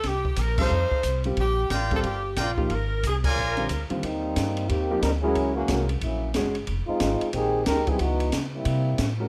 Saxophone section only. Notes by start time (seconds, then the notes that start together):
0.07 G4
0.39 A#4
0.60 C5
1.40 G4
1.94 A4
2.06 G4
2.40 F4
2.72 A#4
3.06 G#4
3.27 A#4